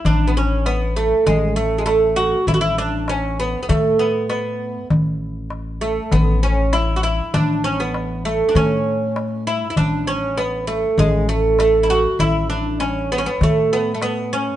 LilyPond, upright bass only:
\new Staff \with { instrumentName = "Upright bass" } { \clef bass \time 4/4 \tempo 4 = 99 a,,2 a,,2 | a,,2 a,2 | a,,2 a,,2 | a,,2 a,2 |
a,,2 a,,2 | a,,2 a,2 | }